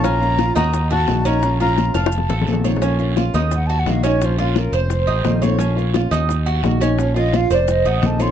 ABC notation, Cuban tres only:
X:1
M:4/4
L:1/8
Q:1/4=173
K:Bbm
V:1 name="Cuban tres"
D2 F E2 G2 D- | D F2 f2 =A2 d | D2 F E2 G2 D- | D F2 c2 E2 d |
D2 F E2 G2 D- | D F2 c2 E2 d |]